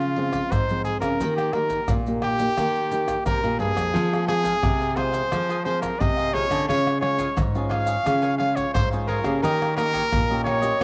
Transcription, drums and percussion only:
0.01 pandeiro, maracas
0.16 pandeiro
0.33 pandeiro, tamborim, maracas, surdo
0.52 pandeiro, tamborim, maracas, surdo
0.69 pandeiro, maracas
0.85 pandeiro, maracas
1.02 pandeiro, tamborim, maracas, surdo
1.20 pandeiro, maracas, surdo
1.38 pandeiro, tamborim, maracas
1.53 pandeiro, tamborim
1.70 pandeiro, maracas, surdo
1.88 pandeiro, tamborim, maracas, surdo
2.07 pandeiro, maracas
2.22 pandeiro, tamborim, surdo
2.39 pandeiro, maracas
2.57 pandeiro, tamborim, maracas, surdo
2.75 pandeiro, maracas
2.91 pandeiro, maracas
3.08 pandeiro, tamborim, maracas, surdo
3.26 pandeiro, tamborim, maracas, surdo
3.43 pandeiro, maracas
3.60 pandeiro
3.77 pandeiro, tamborim, maracas, surdo
3.96 pandeiro, maracas, surdo
4.14 pandeiro, tamborim, maracas
4.28 pandeiro, tamborim
4.45 pandeiro, maracas, surdo
4.63 pandeiro, tamborim, maracas, surdo
4.82 pandeiro, maracas
4.97 pandeiro, tamborim, surdo
5.14 pandeiro, maracas
5.32 pandeiro, tamborim, maracas, surdo
5.50 pandeiro, maracas
5.66 pandeiro
5.83 pandeiro, tamborim, maracas, surdo
6.01 pandeiro, tamborim, maracas, surdo
6.19 pandeiro, maracas
6.35 pandeiro, surdo
6.51 pandeiro, tamborim, maracas, surdo
6.70 pandeiro, maracas, surdo
6.87 pandeiro, tamborim, maracas
7.03 pandeiro, tamborim
7.18 pandeiro, maracas, surdo
7.37 pandeiro, tamborim, maracas, surdo
7.55 pandeiro, maracas
7.71 pandeiro, tamborim, surdo
7.87 pandeiro, maracas
8.06 pandeiro, tamborim, maracas, surdo
8.24 pandeiro, maracas
8.40 pandeiro
8.57 pandeiro, tamborim, maracas, surdo
8.75 pandeiro, tamborim, maracas, surdo
8.93 pandeiro, maracas
9.08 pandeiro
9.24 pandeiro, tamborim, maracas, surdo
9.44 pandeiro, maracas, surdo
9.62 pandeiro, tamborim, maracas
9.78 pandeiro, tamborim, maracas
9.94 pandeiro, maracas, surdo
10.13 pandeiro, tamborim, maracas, surdo
10.31 pandeiro, maracas
10.47 pandeiro, tamborim, surdo
10.63 pandeiro, maracas

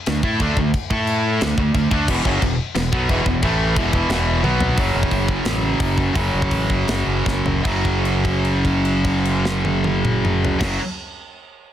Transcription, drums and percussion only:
0.06 snare, china
0.23 kick
0.40 kick, china
0.57 kick
0.74 kick, china
0.91 kick
1.07 china
1.41 snare, china
1.58 kick
1.75 kick, china
1.91 kick
2.08 kick, china, crash
2.25 kick
2.42 kick, china
2.75 snare, china
2.93 kick
3.09 kick, china
3.26 kick
3.42 kick, china
3.76 kick, china
3.93 kick
4.10 snare, china
4.44 high tom
4.61 floor tom
4.78 kick, open hi-hat
5.03 kick
5.11 kick, open hi-hat
5.28 kick
5.45 snare, open hi-hat
5.80 kick, open hi-hat
5.98 kick
6.15 kick, open hi-hat
6.42 kick
6.51 kick, open hi-hat
6.70 kick
6.88 snare, open hi-hat
7.26 kick, snare
7.46 floor tom
7.65 kick, crash
7.85 kick, crash
8.05 crash
8.25 kick, crash
8.45 crash
8.65 kick, crash
8.85 crash
9.04 kick, crash
9.25 crash
9.45 snare
9.65 high tom
9.84 high tom
10.05 mid tom
10.25 mid tom
10.45 floor tom
10.61 kick, snare, crash

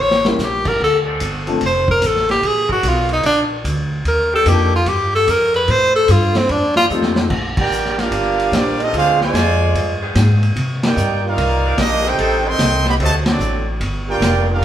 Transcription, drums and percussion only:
0.11 snare
0.25 snare
0.39 snare, hi-hat pedal
0.65 kick, crash
1.20 hi-hat pedal, ride
1.47 ride
1.61 ride
1.88 kick
2.02 hi-hat pedal, ride
2.16 snare
2.29 snare, ride
2.43 ride
2.69 kick
2.83 hi-hat pedal, ride
3.09 ride
3.23 ride
3.65 hi-hat pedal, ride
4.05 ride
4.46 hi-hat pedal, ride
4.86 ride
5.28 hi-hat pedal, ride
5.54 ride
5.68 ride
6.08 hi-hat pedal, ride
6.35 snare, ride
6.49 ride
6.76 snare
6.89 hi-hat pedal
7.02 snare
7.16 snare
7.30 kick, crash
7.57 kick, crash
7.72 hi-hat pedal
7.85 snare
7.98 snare, ride
8.12 ride
8.39 ride
8.53 snare, hi-hat pedal, ride
8.80 ride
8.94 ride
9.21 snare
9.35 snare, hi-hat pedal, ride
9.75 ride
10.15 snare, hi-hat pedal, ride
10.43 ride
10.56 ride
10.83 snare, ride
10.97 hi-hat pedal
11.38 ride
11.78 snare, hi-hat pedal, ride
12.05 ride
12.19 ride
12.59 snare, hi-hat pedal, ride
12.85 snare
13.00 ride
13.26 snare, ride
13.40 hi-hat pedal
13.81 ride
14.22 snare, hi-hat pedal, ride

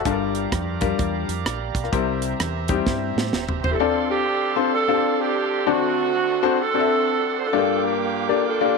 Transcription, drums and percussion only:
0.05 kick, closed hi-hat
0.35 closed hi-hat
0.52 kick, cross-stick, closed hi-hat
0.81 kick, closed hi-hat
0.99 kick, closed hi-hat
1.29 closed hi-hat
1.46 cross-stick, closed hi-hat
1.75 kick, closed hi-hat
1.84 cross-stick
1.93 kick, closed hi-hat
2.22 closed hi-hat
2.40 cross-stick, closed hi-hat
2.68 kick, closed hi-hat
2.86 kick, snare
3.18 snare
3.33 snare
3.49 floor tom
3.64 floor tom

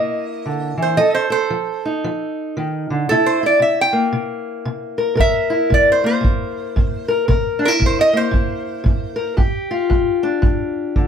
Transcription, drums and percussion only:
5.20 kick
5.72 kick
6.25 kick
6.77 kick
7.29 kick
7.82 kick
8.34 kick
8.86 kick
9.38 kick
9.91 kick
10.43 kick
10.96 kick

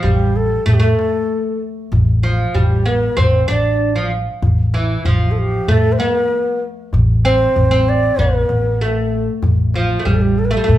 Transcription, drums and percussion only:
0.04 darbuka dum
0.67 darbuka dum
0.99 darbuka tek
1.61 darbuka ka
1.93 darbuka dum
2.08 darbuka ka
2.23 darbuka tek
2.55 darbuka dum
2.87 darbuka ka
3.18 darbuka dum
3.34 darbuka ka
3.49 darbuka tek
3.65 darbuka ka
3.80 darbuka ka
4.42 darbuka dum
4.58 darbuka ka
4.74 darbuka tek
5.05 darbuka dum
5.37 darbuka ka
5.68 darbuka dum
5.83 darbuka ka
5.99 darbuka tek
6.15 darbuka ka
6.31 darbuka ka
6.46 darbuka ka
6.62 darbuka ka
6.93 darbuka dum
7.09 darbuka ka
7.25 darbuka tek
7.56 darbuka dum
7.87 darbuka ka
8.18 darbuka dum
8.34 darbuka ka
8.49 darbuka tek
8.65 darbuka ka
9.42 darbuka dum
9.59 darbuka ka
9.74 darbuka tek
10.06 darbuka dum
10.37 darbuka ka
10.68 darbuka dum

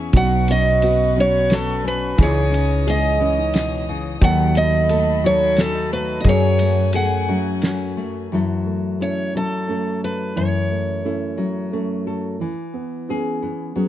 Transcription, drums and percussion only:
0.13 kick, ride
0.48 ride
0.82 ride
1.50 snare, ride
2.18 kick, ride
2.54 ride
2.88 ride
3.54 snare, ride
4.21 kick, ride
4.55 ride
4.89 ride
5.57 snare, ride
6.24 kick, ride
6.59 ride
6.93 ride
7.62 snare, ride

